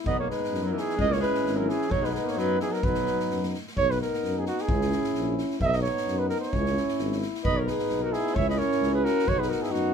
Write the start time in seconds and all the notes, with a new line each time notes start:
0.05 B1 B3 D#4 D#5, kick
0.19 A#3 C#5
0.29 G#3 B4, snare
0.44 snare
0.52 F#2, snare
0.63 F#3
0.67 A#4
0.72 E3
0.77 G#4, snare
0.90 snare
0.97 C#2 G#3 C#4 E4, kick
1.01 D#5
1.08 A#3
1.12 C#5, snare
1.20 G#3 B4, snare
1.35 snare
1.45 G#1, snare
1.57 F#3 A#4
1.66 E3 G#4, snare
1.82 snare
1.89 B1 F#3 B3 D#4 C#5, kick
2.02 G#3 B4, snare
2.11 G#3, snare
2.15 B4
2.24 A#3, snare
2.29 C#5
2.37 F#2 F#3 B4, snare
2.59 E3 G#4, snare
2.70 F#3 A#4, snare
2.82 B1 F#3 B3 D#4 B4, kick
2.95 snare
3.06 snare
3.20 snare
3.31 F#2, snare
3.43 snare
3.54 snare
3.67 snare
3.77 B1 B3 D#4 C#5, kick
3.91 B4, snare
4.01 A#4, snare
4.14 snare
4.23 F#2, snare
4.39 G#4
4.46 F#4, snare
4.58 G#4, snare
4.69 C#2 C#4 E4, kick
4.81 snare
4.92 snare
5.04 snare
5.15 A#1, snare
5.38 snare
5.51 snare
5.60 B1 B3 D#4 E5, kick
5.65 D#5 E5
5.73 D#5, snare
5.82 C#5, snare
5.97 snare
6.07 F#2, snare
6.19 B4
6.29 A#4, snare
6.41 C#5, snare
6.53 C#2 C#4 E4, kick
6.66 snare
6.77 snare
6.88 snare
6.99 G#1, snare
7.12 snare
7.22 snare
7.35 snare
7.43 B1 B3 D#4 B4 D#5, kick
7.57 A#4 C#5
7.66 G#4 B4, snare
7.79 snare
7.89 B1, snare
8.02 F#4 A#4
8.12 E4 G#4, snare
8.27 snare
8.34 C#2 C#4 E4 C#5 E5, kick
8.49 B4 D#5, snare
8.57 A#4 C#5, snare
8.71 snare
8.81 C#2, snare
8.94 G#4 B4
9.04 F#4 A#4, snare
9.19 snare
9.26 B1 B3 D#4 F#4 C#5, kick
9.39 G#4 B4, snare
9.49 F#4 A#4, snare
9.62 E4 G#4, snare
9.71 F#2 D#4 F#4, snare